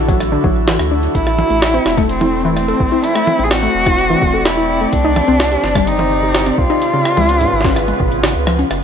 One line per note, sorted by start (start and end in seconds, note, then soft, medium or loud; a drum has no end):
0.00 0.38 A1 loud
0.00 1.11 D3 medium
0.00 1.11 D4 medium
0.00 3.00 E4 medium
0.00 1.11 F#4 medium
0.00 1.11 A4 medium
0.09 0.13 F#3 loud
0.09 kick loud
0.09 closed hi-hat medium
0.20 cross-stick medium
0.20 closed hi-hat medium
0.32 0.43 D3 loud
0.44 0.79 A1 medium
0.44 0.49 F#3 loud
0.44 kick loud
0.68 0.72 E3 medium
0.68 snare loud
0.68 closed hi-hat medium
0.79 1.08 D2 loud
0.79 cross-stick medium
0.79 closed hi-hat soft
0.91 1.02 D4 medium
1.15 1.44 A1 loud
1.15 4.89 A3 medium
1.15 4.89 C4 medium
1.15 6.83 C4 medium
1.15 2.05 E4 loud
1.15 6.83 D5 medium
1.15 kick medium
1.15 closed hi-hat medium
1.27 1.31 E4 medium
1.27 cross-stick soft
1.39 mid tom medium
1.50 1.79 A1 medium
1.50 1.58 A3 medium
1.50 closed hi-hat soft
1.62 snare loud
1.62 closed hi-hat medium
1.74 1.79 C4 loud
1.74 closed hi-hat soft
1.86 2.74 E1 medium
1.86 cross-stick medium
1.86 snare medium
1.97 2.09 A3 loud
1.97 kick loud
1.97 closed hi-hat soft
2.09 2.53 C4 loud
2.09 closed hi-hat medium
2.21 2.29 E4 medium
2.21 mid tom medium
2.45 2.53 E3 loud
2.56 3.05 C4 loud
2.56 cross-stick medium
2.56 closed hi-hat medium
2.68 2.76 A4 medium
2.68 closed hi-hat soft
2.80 2.88 A1 loud
2.80 kick loud
2.92 2.97 E4 medium
3.04 3.45 E4 loud
3.04 6.78 D5 medium
3.04 closed hi-hat medium
3.15 3.24 A3 medium
3.15 cross-stick medium
3.27 mid tom loud
3.39 3.68 A1 loud
3.39 3.44 C4 loud
3.39 closed hi-hat soft
3.44 3.52 G#4 medium
3.51 4.47 F#4 loud
3.51 snare loud
3.51 closed hi-hat medium
3.63 3.74 A3 loud
3.63 closed hi-hat soft
3.67 closed hi-hat soft
3.71 4.15 E1 medium
3.71 closed hi-hat soft
3.86 3.94 E4 medium
3.86 kick loud
3.86 cross-stick medium
3.86 closed hi-hat medium
3.98 closed hi-hat medium
4.10 4.18 E3 loud
4.22 4.86 E1 medium
4.22 kick loud
4.34 4.42 A4 medium
4.45 4.94 E4 loud
4.45 cross-stick medium
4.45 snare loud
4.45 closed hi-hat medium
4.57 4.62 E4 medium
4.57 closed hi-hat soft
4.81 4.89 A3 medium
4.93 5.22 C2 loud
4.93 6.80 C3 medium
4.93 6.80 D#3 medium
4.93 6.80 C4 medium
4.93 5.89 D4 loud
4.93 6.80 G4 medium
4.93 kick medium
4.93 closed hi-hat medium
5.04 5.09 D#4 loud
5.16 cross-stick medium
5.16 mid tom loud
5.28 5.57 C2 medium
5.28 5.39 C4 loud
5.28 closed hi-hat soft
5.40 snare loud
5.40 closed hi-hat medium
5.52 5.60 G4 medium
5.52 closed hi-hat medium
5.64 6.52 G1 medium
5.64 snare medium
5.75 5.83 G3 loud
5.75 kick loud
5.75 cross-stick medium
5.75 closed hi-hat medium
5.87 6.59 D#4 loud
5.87 closed hi-hat medium
5.99 6.07 C5 medium
5.99 mid tom medium
6.23 6.28 G4 medium
6.35 snare loud
6.35 closed hi-hat medium
6.46 6.54 C4 medium
6.46 cross-stick medium
6.46 closed hi-hat soft
6.58 6.66 C2 loud
6.58 8.23 F4 loud
6.58 kick loud
6.70 6.75 D#4 loud
6.82 8.69 C#3 medium
6.82 8.72 B3 medium
6.82 8.69 C#4 medium
6.82 8.69 F4 medium
6.82 8.69 G#4 medium
6.82 8.69 B4 medium
6.82 8.72 B4 medium
6.82 closed hi-hat medium
6.93 7.05 C#3 loud
7.05 cross-stick medium
7.17 7.46 C#2 medium
7.17 7.25 G#3 medium
7.17 closed hi-hat soft
7.17 mid tom loud
7.29 closed hi-hat medium
7.41 7.49 G#2 loud
7.41 closed hi-hat medium
7.53 7.93 G#1 loud
7.61 7.72 C#4 medium
7.61 kick loud
7.61 snare soft
7.65 snare medium
7.65 closed hi-hat medium
7.68 snare soft
7.76 cross-stick medium
7.76 closed hi-hat medium
7.88 7.93 G#3 medium
7.88 closed hi-hat soft
8.00 8.35 G#1 medium
8.00 8.08 B2 medium
8.00 kick loud
8.12 closed hi-hat soft
8.23 8.28 C#3 medium
8.23 snare loud
8.23 closed hi-hat medium
8.35 8.64 C#2 medium
8.35 closed hi-hat soft
8.47 8.55 F3 loud
8.47 cross-stick medium
8.59 8.67 C#4 loud
8.59 closed hi-hat soft
8.71 8.84 F#1 loud
8.71 8.84 A3 medium
8.71 8.84 A4 medium
8.71 cross-stick medium
8.71 closed hi-hat medium